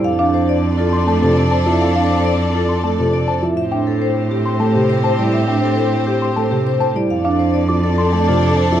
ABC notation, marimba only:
X:1
M:3/4
L:1/16
Q:1/4=102
K:Flyd
V:1 name="Marimba"
z D z3 F z A F z c E | z D z3 F z A F z c E | z D z3 G z A G z c E | z D z3 G z A G z c E |
z D z3 F z A F z c E |]